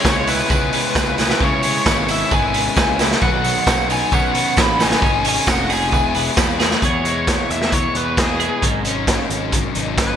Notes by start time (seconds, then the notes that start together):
Already playing: C#3 G#3
0.04 C#2 G#3 B3 C#4 E4 G#4 C#5, kick, snare, tambourine
0.27 C#4 E4 G#4 B4, open hi-hat, tambourine
0.50 C#2 C#3 G#3 B3 C#4 E4 G#4, kick, tambourine
0.73 G#3 C#4 E4 G#4, open hi-hat, tambourine
0.95 C#2 B3 B4, kick, snare, tambourine
1.18 C#4 E4 G#4, snare, open hi-hat, tambourine
1.30 snare
1.41 C#3 G#3 C#4 E4 G#4 C#5, kick, tambourine
1.63 G#3, open hi-hat, tambourine
1.86 G#1 G#3 B3 C#4 E4 G#4, kick, snare, tambourine
2.08 C#4 E4 G#4 E5, open hi-hat, tambourine
2.31 G#1 C#3 G#3 B3 C#4 E4 G#4 G#5, kick, tambourine
2.53 G#3 C#4 E4 G#4, open hi-hat, tambourine
2.76 C#2 B3, kick, snare, tambourine
2.99 C#4 E4 G#4, snare, open hi-hat, tambourine
3.12 snare
3.21 B1 B2 D#3 F#3 B3 D#4 B4 F#5, kick, tambourine
3.44 F#3, open hi-hat, tambourine
3.66 B1 F#3 B3 C#4 D#4 B4, kick, snare, tambourine
3.88 F#3 B3 D#4 B4 G#5, open hi-hat, tambourine
4.11 B1 B2 D#3 F#3 B3 C#4 D#4 B4 F#5, kick, tambourine
4.34 F#3 B3 D#4 B4, open hi-hat, tambourine
4.57 A1 C#4, kick, snare, tambourine
4.61 B5
4.79 F#3 B3 D#4 B4 G#5, snare, open hi-hat, tambourine
4.91 snare
5.01 G#1 G#2 D#3 G#3 C#4 D#4 G#4, kick, tambourine
5.25 C#4 G#5, open hi-hat, tambourine
5.47 F1 G#3 C#4 D#4 G#4, kick, snare, tambourine
5.51 F#5
5.69 G#3 C#4 D#4 G#4, open hi-hat, tambourine
5.74 G#5
5.92 E1 E2 E3 G#3 B3 E4 G#4, kick, tambourine
6.14 G#3 B3 E4 G#4, open hi-hat, tambourine
6.37 E2 E4, kick, snare, tambourine
6.59 G#3 B3 E4 G#4, snare, open hi-hat, tambourine
6.71 snare
6.82 E2 B3 E4 G#4 C#5, kick, closed hi-hat
7.05 G#3, closed hi-hat
7.27 E3, kick, snare, closed hi-hat
7.50 E2 G#3 E5, closed hi-hat
7.62 snare
7.72 E3 C#5, kick, closed hi-hat
7.95 E2 B3 B4, closed hi-hat
8.17 G#3 G#4, kick, snare, closed hi-hat
8.40 E3 B3 E4 G#4, closed hi-hat
8.62 G#1 G#2 F#3 C#4 D#4, kick, closed hi-hat
8.85 C#4, closed hi-hat
9.07 F#3, kick, snare, closed hi-hat
9.30 G#1 C#4, closed hi-hat
9.52 F#3, kick, closed hi-hat
9.75 G#1 D#4, closed hi-hat
9.98 C#4 B4, kick, snare, closed hi-hat